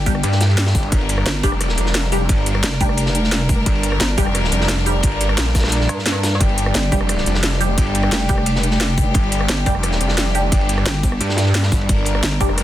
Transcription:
Already playing: G1 G3 D4 G4
0.06 G3 D4 G4, kick, open hi-hat, ride
0.15 cross-stick
0.23 G2, closed hi-hat, ride
0.32 snare
0.41 snare, closed hi-hat, ride
0.49 snare
0.58 snare, closed hi-hat, ride
0.66 snare, ride
0.75 G1, kick, snare, open hi-hat
0.83 ride
0.92 G1 A#4, kick, closed hi-hat, ride
1.01 ride
1.09 closed hi-hat, ride
1.18 cross-stick
1.26 G1, snare, closed hi-hat, ride
1.35 ride
1.43 F1 G3 D4 G4, kick, cross-stick, open hi-hat, ride
1.52 cross-stick
1.61 cross-stick, closed hi-hat, ride
1.69 snare
1.77 F1, closed hi-hat, ride
1.86 snare
1.94 snare, closed hi-hat, ride
2.04 snare
2.12 G3 D4 G4, open hi-hat, ride
2.29 G1, kick, closed hi-hat, ride
2.38 ride
2.46 closed hi-hat, ride
2.55 cross-stick, ride
2.63 F1, snare, closed hi-hat, ride
2.72 snare
2.81 G3 D4 G4, kick, open hi-hat, ride
2.89 cross-stick
2.97 closed hi-hat, ride
3.06 snare
3.15 closed hi-hat, ride
3.24 snare
3.32 snare, closed hi-hat, ride
3.41 ride
3.49 kick, open hi-hat, ride
3.66 G1, kick, closed hi-hat, ride
3.75 ride
3.83 closed hi-hat, ride
3.92 cross-stick
4.00 G1, snare, closed hi-hat, ride
4.09 ride
4.18 F1 G3 D4 G4, kick, open hi-hat, ride
4.26 cross-stick
4.35 cross-stick, closed hi-hat, ride
4.44 snare
4.52 F1, closed hi-hat, ride
4.61 snare
4.68 snare, closed hi-hat, ride
4.78 snare
4.86 G3 D4 G4, open hi-hat, ride
5.03 G1, kick, closed hi-hat, ride
5.12 ride
5.21 closed hi-hat, ride
5.29 cross-stick, ride
5.38 A#1, snare, closed hi-hat, ride
5.46 snare
5.55 kick, cross-stick, snare, open hi-hat, ride
5.59 snare, ride
5.63 cross-stick, snare, ride
5.68 snare, ride
5.72 closed hi-hat, ride
5.81 snare
5.89 G2, closed hi-hat, ride
5.99 snare
6.06 snare, closed hi-hat, ride
6.15 ride
6.23 snare, open hi-hat, ride
6.32 snare
6.40 G1 G4, kick, closed hi-hat, ride
6.49 ride
6.58 closed hi-hat, ride
6.66 cross-stick
6.74 G1, snare, closed hi-hat, ride
6.83 ride
6.92 F1 G3 D4 G4, kick, cross-stick, open hi-hat, ride
7.01 cross-stick
7.09 cross-stick, closed hi-hat, ride
7.18 snare
7.26 F1, closed hi-hat, ride
7.35 snare
7.43 snare, closed hi-hat, ride
7.52 snare
7.61 G3 D4 G4, open hi-hat, ride
7.78 G1, kick, closed hi-hat, ride
7.87 ride
7.95 closed hi-hat, ride
8.03 cross-stick, ride
8.12 F1, snare, closed hi-hat, ride
8.21 snare
8.29 G3 D4 G4, kick, open hi-hat, ride
8.38 cross-stick
8.46 closed hi-hat, ride
8.56 snare
8.63 closed hi-hat, ride
8.71 snare
8.81 snare, closed hi-hat, ride
8.90 ride
8.98 kick, open hi-hat, ride
9.14 G1, kick, closed hi-hat, ride
9.23 ride
9.32 closed hi-hat, ride
9.41 cross-stick
9.49 G1, snare, closed hi-hat, ride
9.58 ride
9.66 F1 G3 D4 G4, kick, cross-stick, open hi-hat, ride
9.75 cross-stick
9.83 cross-stick, closed hi-hat, ride
9.92 snare
10.01 F1, closed hi-hat, ride
10.09 snare
10.18 snare, closed hi-hat, ride
10.27 snare
10.34 G3 D4 G4, open hi-hat, ride
10.52 G1, kick, closed hi-hat, ride
10.61 ride
10.69 closed hi-hat, ride
10.78 cross-stick, ride
10.86 G1, snare, closed hi-hat, ride
10.95 snare
11.03 kick, open hi-hat, ride
11.12 cross-stick
11.21 G2, closed hi-hat, ride
11.29 snare
11.37 snare, closed hi-hat, ride
11.46 snare
11.55 snare, closed hi-hat, ride
11.63 snare, ride
11.72 G1, kick, snare, open hi-hat
11.81 ride
11.89 G1 A#4, kick, closed hi-hat, ride
11.98 ride
12.05 closed hi-hat, ride
12.15 cross-stick
12.23 G1, snare, closed hi-hat, ride
12.32 ride
12.41 F1 G3 D4 G4, kick, cross-stick, open hi-hat, ride
12.49 cross-stick
12.58 cross-stick, closed hi-hat, ride

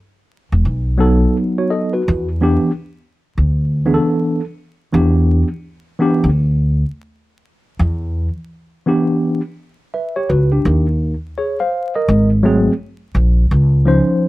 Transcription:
0.52 E1
0.65 B1
0.98 F#3 B3 D#4 A4
1.58 F#4 C#5
1.70 A4 D#5
1.93 F#4 B4
2.08 E2
2.41 E3 B3 D4 G4
3.38 D2
3.85 E3 B3 D4 G#4
3.94 A4
4.92 E2 E3 B3 D4 G4
5.99 E3 B3 D4 G4
6.24 D2
7.79 E2
8.86 E3 B3 D4 G4
9.94 B4 E5
10.16 G4 C#5
10.29 C#2 F#4 B4
10.52 D4 G4
10.65 D#2
11.38 G#4 C#5
11.60 C5 F5
11.96 A#4 D#5
12.08 G#1
12.43 F#3 A3 C4 G#4
13.15 A#1
13.51 C#2
13.85 F3 C#4 D#4 C5

